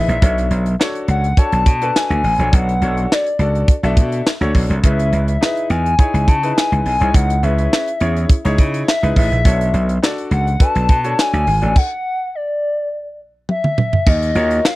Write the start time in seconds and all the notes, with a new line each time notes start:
Already playing: D#4 E4 G#4 B4 E5
0.08 A#1, closed hi-hat
0.22 B1 D4 F#4 A4 C#5, kick, closed hi-hat
0.38 closed hi-hat
0.51 B1, closed hi-hat
0.66 closed hi-hat
0.79 D4 F#4 A4 C#5, snare, clap
0.95 closed hi-hat
1.08 C#2 F#5, closed hi-hat
1.24 closed hi-hat
1.37 D4 F#4 A4 C#5 A5, kick, closed hi-hat
1.52 B1, closed hi-hat
1.66 B2, kick, closed hi-hat
1.81 D4 F#4 A4 B4, closed hi-hat
1.96 G#5, snare, clap
2.10 D2, closed hi-hat
2.24 A1, open hi-hat
2.39 A#1 D4 F#4 A4 C#5, closed hi-hat
2.53 B1 F#5, kick, closed hi-hat
2.69 closed hi-hat
2.81 B1 D4 F#4 A4 C#5, closed hi-hat
2.97 closed hi-hat
3.12 D5, snare, clap
3.26 closed hi-hat
3.39 C#2 D4 F#4 A4 D5, closed hi-hat
3.55 closed hi-hat
3.68 kick, closed hi-hat
3.83 B1 D4 F#4 A4 E5, closed hi-hat
3.97 B2, kick, closed hi-hat
4.12 closed hi-hat
4.27 snare, clap
4.41 D2 D4 F#4 A4 C#5, closed hi-hat
4.55 B1, kick, open hi-hat
4.70 C2, closed hi-hat
4.83 C#2 C#4 E4 G#4 B4 E5, kick, closed hi-hat
4.99 closed hi-hat
5.12 C#2, closed hi-hat
5.28 E5, closed hi-hat
5.41 D#4 E4 G#4 B4, snare, clap
5.57 closed hi-hat
5.70 E2 G#5, closed hi-hat
5.86 closed hi-hat
5.99 D#4 E4 G#4 C#5, kick, closed hi-hat
6.14 C#2, closed hi-hat
6.28 C#3 A5, kick, closed hi-hat
6.43 D#4 E4 G#4 B4, closed hi-hat
6.57 G#5, snare, clap
6.72 C#2, closed hi-hat
6.85 B1 G#5, open hi-hat
7.00 C2 D#4 E4 G#4 C#5, closed hi-hat
7.14 C#2 F#5, kick, closed hi-hat
7.30 closed hi-hat
7.43 C#2 C#4 E4 G#4 B4 E5, closed hi-hat
7.58 closed hi-hat
7.73 snare, clap
7.88 closed hi-hat
8.00 E2 C#4 E4 G#4 C#5, closed hi-hat
8.17 closed hi-hat
8.30 kick, closed hi-hat
8.45 C#2 D#4 E4 G#4 C#5, closed hi-hat
8.58 C#3, kick, closed hi-hat
8.74 closed hi-hat
8.88 E5, snare, clap
9.02 C#2 D#4 E4 G#4 B4, closed hi-hat
9.16 A1 E5, kick, open hi-hat
9.32 A#1, closed hi-hat
9.45 B1 D4 F#4 A4 C#5, kick, closed hi-hat
9.61 closed hi-hat
9.74 B1, closed hi-hat
9.89 closed hi-hat
10.02 D4 F#4 A4 D5, snare, clap
10.18 closed hi-hat
10.31 C#2 F#5, closed hi-hat
10.47 closed hi-hat
10.60 D4 F#4 A4 B4 A5, kick, closed hi-hat
10.75 B1, closed hi-hat
10.89 B2, kick, closed hi-hat
11.04 D4 F#4 A4 C#5, closed hi-hat
11.19 G#5, snare, clap
11.33 D2, closed hi-hat
11.47 G#1, open hi-hat
11.61 A1 D4 F#4 A4 D5, closed hi-hat
11.76 F#5, kick, crash
12.35 D5
13.49 E5, high tom
13.64 mid tom
13.78 mid tom
13.93 floor tom
14.07 D#2 D#5, kick, crash
14.22 closed hi-hat
14.35 D#2 F4 F#4 A#4 C#5, closed hi-hat
14.51 closed hi-hat
14.65 F5, snare, clap